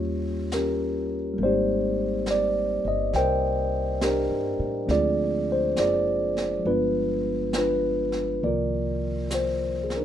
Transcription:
0.00 1.35 D#2 medium
0.00 1.33 G3 soft
0.00 1.36 A#3 soft
0.00 0.55 C#4 soft
0.00 1.40 F4 soft
0.00 0.54 G4 soft
0.00 0.20 C#5 medium
0.52 1.36 G4 soft
0.52 1.42 A#4 medium
0.52 snare soft
0.52 hi-hat pedal medium
0.56 1.37 C#4 soft
1.34 4.88 G3 soft
1.34 4.90 A#3 soft
1.38 2.81 G#1 medium
1.38 4.86 C4 soft
1.38 brush sweep soft
1.43 3.13 D#4 soft
1.43 3.13 G4 medium
1.43 2.24 C5 medium
1.43 2.30 D5 soft
2.26 snare soft
2.26 hi-hat pedal soft
2.31 2.88 D5 medium
2.85 3.11 G1 medium
2.85 3.13 D#5 medium
3.13 4.27 C2 medium
3.13 4.02 A#4 medium
3.13 4.87 C5 medium
3.13 4.05 G5 medium
3.13 brush sweep soft
3.13 snare soft
4.01 4.86 D4 soft
4.01 4.87 G4 soft
4.01 4.93 A#4 medium
4.01 snare soft
4.01 hi-hat pedal soft
4.30 4.58 G2 soft
4.59 4.87 A2 medium
4.87 5.73 D2 medium
4.87 6.58 F3 soft
4.87 6.62 G#3 soft
4.87 6.65 C4 soft
4.87 6.65 D4 soft
4.87 brush sweep soft
4.87 snare soft
4.91 5.78 F4 medium
4.91 5.79 G#4 medium
4.91 5.46 D5 medium
5.52 5.80 C5 medium
5.77 6.62 F#1 medium
5.77 6.63 F4 soft
5.77 6.63 G#4 soft
5.77 6.70 D5 medium
5.77 snare soft
5.77 hi-hat pedal soft
6.37 snare soft
6.59 8.39 F3 soft
6.63 8.38 G1 medium
6.63 8.41 G#3 soft
6.63 8.43 B3 soft
6.63 7.57 F4 soft
6.63 7.57 B4 medium
6.63 brush sweep soft
6.68 7.57 D4 soft
7.53 snare soft
7.53 hi-hat pedal soft
7.58 8.41 D4 soft
7.58 8.41 F4 soft
7.58 8.47 B4 medium
8.12 snare soft
8.42 10.05 C2 medium
8.42 10.05 D#3 soft
8.42 10.05 F3 soft
8.42 10.05 A#3 soft
8.42 10.05 F4 soft
8.42 10.05 D5 soft
8.42 brush sweep soft
8.46 9.95 A#4 medium
9.31 9.85 C5 medium
9.31 snare soft
9.31 hi-hat pedal soft
9.84 9.92 G#4 soft
9.90 snare soft
9.96 10.05 D4 soft
9.96 10.05 D#4 soft
9.96 10.05 A#4 soft

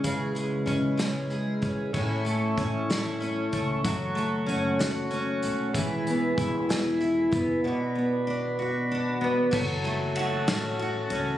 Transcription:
0.00 1.91 C#3 medium
0.00 1.94 C#3 medium
0.00 0.34 G#3 medium
0.00 1.91 G#3 medium
0.00 0.65 C#4 soft
0.00 1.91 E4 soft
0.04 1.29 G#4 medium
0.04 1.93 B4 medium
0.04 kick medium
0.04 closed hi-hat medium
0.35 0.96 G#3 soft
0.35 closed hi-hat soft
0.66 1.62 C#4 soft
0.66 kick medium
0.66 closed hi-hat medium
0.97 2.00 G#3 soft
0.97 snare medium
0.97 closed hi-hat medium
1.30 1.94 G#4 soft
1.30 closed hi-hat soft
1.62 2.58 C#4 soft
1.62 kick medium
1.62 closed hi-hat soft
1.93 2.54 A1 medium
1.93 3.84 A2 medium
1.93 2.88 E4 soft
1.93 5.69 A4 medium
1.93 5.69 C#5 medium
1.93 3.82 E5 soft
1.93 5.69 C#6 medium
1.93 kick medium
1.93 crash medium
2.25 3.53 A3 soft
2.25 closed hi-hat soft
2.58 3.49 A1 medium
2.58 3.20 C#4 medium
2.58 kick medium
2.58 closed hi-hat soft
2.90 3.84 E4 medium
2.90 snare loud
2.90 closed hi-hat medium
3.20 3.90 C#4 soft
3.20 closed hi-hat soft
3.52 3.82 C#2 medium
3.52 3.91 A3 soft
3.52 kick medium
3.52 closed hi-hat medium
3.84 4.44 F#1 medium
3.84 5.74 F#3 medium
3.84 4.78 F#4 medium
3.84 5.73 F#5 medium
3.84 kick medium
3.84 closed hi-hat medium
4.15 5.42 A3 medium
4.15 closed hi-hat soft
4.46 5.39 F#1 medium
4.46 5.09 C#4 medium
4.46 closed hi-hat medium
4.79 5.74 F#4 medium
4.79 snare loud
4.79 closed hi-hat medium
5.11 5.80 C#4 medium
5.11 closed hi-hat soft
5.43 5.73 B1 medium
5.43 5.81 A3 soft
5.43 closed hi-hat medium
5.73 6.33 E1 medium
5.73 7.64 E3 medium
5.73 7.61 G#4 medium
5.73 6.68 G#4 medium
5.73 9.49 B4 medium
5.73 7.61 E5 medium
5.73 9.49 B5 medium
5.73 kick loud
5.73 closed hi-hat loud
6.07 7.31 B3 medium
6.07 closed hi-hat soft
6.38 7.28 E1 medium
6.38 6.99 E4 medium
6.38 kick medium
6.38 closed hi-hat medium
6.69 7.64 G#4 medium
6.69 snare loud
6.69 closed hi-hat medium
7.01 7.70 E4 medium
7.01 closed hi-hat soft
7.32 7.62 F#1 medium
7.32 7.70 B3 medium
7.32 kick medium
7.32 closed hi-hat medium
7.64 9.53 B2 medium
7.64 9.51 F#4 medium
7.64 8.58 F#4 medium
7.64 9.51 D5 medium
7.95 9.20 B3 medium
8.27 8.90 D4 medium
8.59 10.16 F#4 medium
8.91 9.60 D4 medium
9.21 9.59 B3 medium
9.51 10.43 F#1 medium
9.51 11.38 F#3 medium
9.51 11.38 F#4 medium
9.51 11.38 A4 medium
9.51 11.38 C#5 medium
9.51 11.38 A5 medium
9.51 kick loud
9.51 crash medium
9.84 11.38 A3 medium
9.84 ride soft
10.16 10.79 F#4 medium
10.16 ride medium
10.48 11.07 A1 medium
10.48 11.11 C#4 medium
10.48 snare loud
10.48 ride medium
10.79 11.38 F#4 medium
10.79 ride soft
11.10 11.38 C#2 medium
11.10 11.38 C#4 medium
11.10 ride medium

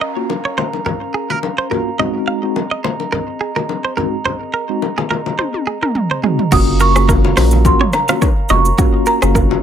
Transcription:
0.00 1.95 C#4 medium
0.00 1.95 A#4 medium
0.00 0.11 D#5 medium
0.00 1.95 F5 medium
0.00 6.48 A#5 medium
0.00 downlifter medium
0.16 0.32 A#3 medium
0.16 0.32 C#4 medium
0.16 0.32 F4 medium
0.16 0.32 F#4 medium
0.30 high bongo medium
0.45 0.53 C#5 medium
0.58 0.68 C5 medium
0.58 low bongo medium
0.73 high bongo medium
0.86 0.96 A#4 medium
0.86 low conga medium
1.14 1.30 G#4 medium
1.30 1.38 A#4 medium
1.30 low bongo medium
1.43 high bongo medium
1.58 1.66 C5 medium
1.70 1.88 A#3 medium
1.70 1.88 C#4 medium
1.70 1.88 F4 medium
1.70 1.88 F#4 medium
1.70 1.81 A#4 medium
1.70 low conga medium
1.99 2.39 G#3 medium
1.99 2.39 C4 medium
1.99 6.48 C4 medium
1.99 2.39 D#4 medium
1.99 2.39 F#4 loud
1.99 6.48 G#4 medium
1.99 6.48 D#5 medium
1.99 2.09 D#5 loud
1.99 low conga medium
2.28 2.37 F5 medium
2.42 2.58 G#3 medium
2.42 2.58 C4 medium
2.42 2.58 D#4 medium
2.42 2.58 F#4 medium
2.56 high bongo medium
2.71 2.79 D#5 medium
2.84 2.94 C5 medium
2.84 low bongo medium
3.00 high bongo medium
3.12 3.22 A#4 medium
3.12 low conga medium
3.41 3.51 G#4 medium
3.56 3.64 A#4 medium
3.56 low bongo medium
3.69 high bongo medium
3.85 3.93 C5 medium
3.97 4.15 G#3 medium
3.97 4.15 C4 medium
3.97 4.15 D#4 medium
3.97 4.15 F#4 medium
3.97 4.07 A#4 medium
3.97 low conga medium
4.25 4.35 C5 loud
4.25 low conga medium
4.54 4.64 A#4 medium
4.69 4.84 G#3 medium
4.69 4.85 C4 medium
4.69 4.85 D#4 medium
4.69 4.85 F#4 medium
4.82 high bongo medium
4.98 5.06 G#4 medium
4.98 low bongo medium
5.11 5.20 A#4 medium
5.11 low bongo medium
5.26 high bongo medium
5.26 low bongo medium
5.39 5.49 C5 medium
5.39 high tom medium
5.54 high tom medium
5.67 5.77 G#4 medium
5.83 5.91 A#4 medium
5.83 mid tom medium
5.95 mid tom medium
6.11 6.19 C5 medium
6.23 6.41 G#3 medium
6.23 6.41 C4 medium
6.23 6.41 D#4 medium
6.23 6.41 F#4 medium
6.23 6.34 G#4 medium
6.23 floor tom loud
6.39 floor tom medium
6.52 7.33 F#1 loud
6.52 6.92 A#3 loud
6.52 6.92 C#4 medium
6.52 6.92 F4 medium
6.52 6.62 F#4 loud
6.52 6.92 F#4 loud
6.52 9.63 A#4 medium
6.52 9.63 C#5 medium
6.52 9.63 F5 medium
6.52 9.63 A#5 medium
6.52 6.79 D#6 loud
6.52 kick loud
6.52 crash loud
6.52 low conga medium
6.52 shaker medium
6.80 6.90 A#4 medium
6.80 7.62 C#6 loud
6.80 shaker medium
6.96 7.34 A#3 medium
6.96 7.34 C#4 medium
6.96 7.34 F4 medium
6.96 7.34 F#4 medium
6.96 7.04 G#4 medium
6.96 cross-stick medium
6.96 shaker medium
7.09 7.19 A#4 medium
7.09 kick loud
7.09 high bongo medium
7.09 shaker medium
7.25 low bongo medium
7.37 7.70 A#1 medium
7.37 7.63 A#3 medium
7.37 7.63 C#4 medium
7.37 7.63 F4 medium
7.37 7.63 F#4 medium
7.37 7.47 C5 medium
7.37 cross-stick medium
7.37 open hi-hat medium
7.37 low bongo medium
7.37 shaker medium
7.51 low bongo medium
7.51 shaker medium
7.65 7.83 A#3 loud
7.65 7.83 C#4 medium
7.65 7.83 F4 medium
7.65 7.83 F#4 loud
7.65 7.79 C6 loud
7.65 kick loud
7.65 low conga medium
7.65 shaker medium
7.80 7.89 C#5 medium
7.80 mid tom loud
7.93 8.52 A#5 loud
7.93 cross-stick medium
7.93 high bongo medium
7.93 shaker medium
8.08 8.24 A#3 medium
8.08 8.24 C#4 medium
8.08 8.24 F4 medium
8.08 8.24 F#4 medium
8.08 8.17 F5 medium
8.08 cross-stick loud
8.08 low bongo medium
8.08 shaker medium
8.22 8.32 C#5 medium
8.22 kick loud
8.22 high bongo medium
8.22 shaker medium
8.49 8.72 F1 loud
8.49 8.67 A#3 medium
8.49 8.68 C#4 medium
8.49 8.68 F4 medium
8.49 8.68 F#4 medium
8.49 8.60 D#5 medium
8.49 9.09 C#6 loud
8.49 low conga medium
8.49 shaker medium
8.65 shaker medium
8.78 9.18 A#3 loud
8.78 9.18 C#4 medium
8.78 9.19 F4 medium
8.78 8.88 F#4 medium
8.78 9.19 F#4 loud
8.78 kick loud
8.78 low conga medium
8.78 shaker medium
9.06 9.17 A#4 medium
9.06 9.63 A#5 medium
9.06 shaker medium
9.22 9.54 F#1 medium
9.22 9.60 A#3 medium
9.22 9.60 C#4 medium
9.22 9.60 F4 medium
9.22 9.60 F#4 medium
9.22 9.31 G#4 medium
9.22 cross-stick loud
9.22 shaker medium
9.35 9.45 A#4 medium
9.35 kick loud
9.35 high bongo medium
9.35 shaker medium
9.51 low bongo medium

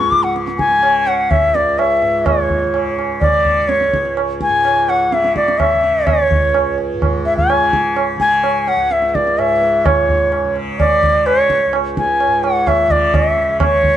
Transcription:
0.00 1.40 C#2 medium
0.00 2.02 G#2 medium
0.00 0.17 C#3 medium
0.00 0.12 C#6 medium
0.00 tabla te medium
0.11 0.25 D6 medium
0.11 tabla ke soft
0.17 0.78 C#3 soft
0.23 0.35 F#5 medium
0.23 tabla te soft
0.36 tabla te medium
0.47 tabla te medium
0.58 1.09 G#5 medium
0.58 tabla ke soft
0.71 tabla te soft
0.78 2.63 C#3 medium
0.83 tabla na medium
1.07 1.32 F#5 medium
1.07 tabla na soft
1.31 1.56 E5 medium
1.31 tabla na medium
1.31 tabla ge medium
1.40 3.87 C#2 medium
1.55 1.80 D5 medium
1.55 tabla te medium
1.79 2.28 E5 medium
1.79 tabla na medium
2.02 4.48 G#2 medium
2.02 tabla te soft
2.26 2.98 C#5 medium
2.26 tabla na medium
2.26 tabla ge medium
2.50 tabla ge medium
2.63 3.26 C#3 medium
2.74 tabla na medium
2.99 tabla na medium
3.21 3.70 D5 medium
3.21 tabla na medium
3.21 tabla ge medium
3.26 5.09 C#3 medium
3.45 tabla ge soft
3.68 4.16 C#5 medium
3.68 tabla te medium
3.81 tabla te medium
3.88 6.31 C#2 medium
3.94 tabla ke soft
4.05 tabla te soft
4.17 tabla na medium
4.41 4.91 G#5 medium
4.41 tabla ke soft
4.49 6.93 G#2 medium
4.65 tabla na medium
4.88 5.15 F#5 medium
4.88 tabla na soft
5.09 5.72 C#3 medium
5.09 tabla te medium
5.13 5.36 E5 medium
5.24 tabla te medium
5.36 5.60 D5 medium
5.36 tabla ke soft
5.48 tabla te medium
5.59 6.08 E5 medium
5.59 tabla na medium
5.59 tabla ge medium
5.72 7.55 C#3 medium
5.84 tabla te soft
6.06 6.78 C#5 medium
6.06 tabla na medium
6.06 tabla ge medium
6.31 8.76 C#2 medium
6.31 tabla ge medium
6.54 tabla na medium
6.78 tabla na soft
6.94 9.38 G#2 medium
7.02 tabla na medium
7.02 tabla ge medium
7.25 7.36 E5 medium
7.25 tabla te soft
7.37 8.04 G#5 medium
7.37 tabla ge medium
7.50 tabla na medium
7.55 8.16 C#3 medium
7.73 tabla ke medium
7.96 tabla na medium
8.16 10.44 C#3 medium
8.16 tabla ke medium
8.21 8.70 G#5 medium
8.44 tabla na medium
8.67 8.93 F#5 medium
8.67 tabla na soft
8.76 11.66 C#2 medium
8.91 9.09 E5 medium
8.91 tabla te medium
9.02 tabla te medium
9.09 9.16 E5 medium
9.15 9.40 D5 medium
9.15 tabla ke medium
9.27 tabla te medium
9.38 9.85 G#2 medium
9.38 9.87 E5 medium
9.38 tabla na medium
9.62 tabla te soft
9.85 12.27 G#2 soft
9.85 10.56 C#5 medium
9.85 tabla na loud
9.85 tabla ge medium
10.09 tabla ge medium
10.32 tabla na medium
10.44 11.06 C#3 medium
10.56 tabla na soft
10.79 11.28 D5 loud
10.79 tabla na medium
10.79 tabla ge medium
11.03 12.88 C#3 medium
11.03 tabla ge medium
11.26 11.73 C#5 medium
11.26 tabla na medium
11.50 tabla ke medium
11.66 13.97 C#2 medium
11.73 tabla na medium
11.97 12.45 G#5 medium
11.97 tabla ke medium
12.20 tabla na medium
12.27 13.97 G#2 medium
12.44 12.69 F#5 medium
12.44 tabla na medium
12.67 12.93 E5 medium
12.67 tabla na medium
12.67 tabla ge medium
12.88 13.49 C#3 medium
12.88 13.16 D5 medium
12.88 tabla ge soft
13.14 13.61 E5 medium
13.14 tabla na medium
13.14 tabla ge medium
13.37 tabla te medium
13.49 13.97 C#3 medium
13.60 13.97 C#5 medium
13.60 tabla na loud
13.60 tabla ge medium
13.84 tabla ge medium

